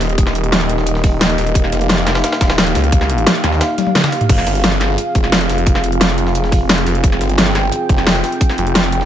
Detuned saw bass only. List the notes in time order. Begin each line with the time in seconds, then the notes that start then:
0.01 D#1
1.38 D#1
1.55 D#1
1.72 F1
2.41 D#1
2.75 C#2
3.44 D#2
4.29 F1
4.47 G1
5.15 F1
5.49 F1
6.87 F1
7.04 F1
7.21 G1
7.89 F1
8.58 F1